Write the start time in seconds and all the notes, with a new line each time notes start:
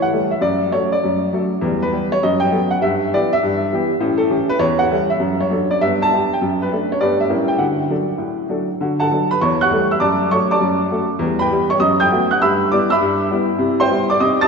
Already playing: E3 C#5
0.02 F#5
0.13 G3 A3 A4
0.31 E5
0.41 F#2 D5
0.72 F#3 A3 A4 C#5
0.92 D5
1.04 F#2
1.33 F#3 A3 A4
1.61 E2 G3
1.82 B4
1.92 G3 B3 G4
2.12 C#5
2.23 F#2 D#5
2.40 G5
2.52 F#3 B3 A4
2.71 F#5
2.81 G2 E5
3.14 E3 B3 G4 D5
3.33 E5
3.43 G2
3.73 E3 B3 G4
4.00 A2 C#4
4.18 A4
4.30 E3 C#4 G4
4.49 B4
4.59 E2 C#5
4.79 F#5
4.90 G3 E4 A4
5.10 E5
5.20 F#2
5.40 C#5
5.51 F#3 D4 A4
5.71 D5
5.81 G2 B3 E5
6.02 A5
6.12 B3 D4 G4
6.33 G5
6.42 F#2
6.62 B4
6.73 A3 D4 A4
6.92 C#5
7.01 G2 G3 B3 B4 D5
7.20 E5
7.29 A2 G3 C#4 A#4
7.48 G5
7.58 D3 F#4 F#5
7.90 F#3 D4 A4
8.18 A2
8.49 F#3 D4 A4
8.81 D3 F#4
9.00 A4 F#5 A5
9.11 F#3 D4 A4
9.31 B4 B5
9.41 E2 C#5 C#6
9.61 F#5 C#6 F#6
9.71 G3 A3 A4
9.91 E5 E6
10.00 F#2 D5 A5 D6
10.31 F#3 A3 A4 C#5 C#6
10.51 D5 A5 D6
10.61 F#2
10.91 F#3 A3 A4
11.19 E2 G3
11.39 B4 G5 B5
11.51 G3 B3 G4
11.70 C#5 C#6
11.80 F#2 D#5 D#6
12.00 G5 D#6 G6
12.12 A3 B3 F#4
12.31 F#5 F#6
12.42 G2 E5 B5 E6
12.72 G3 B3 E4 D5 D6
12.90 E5 B5 E6
13.01 G2
13.31 G3 B3 E4
13.59 C3 E4
13.80 C5 G5 C6
13.90 G3 B3 E4
14.10 D5 D6
14.20 C3 D#4 D#5 D#6
14.41 A5 D#6 A6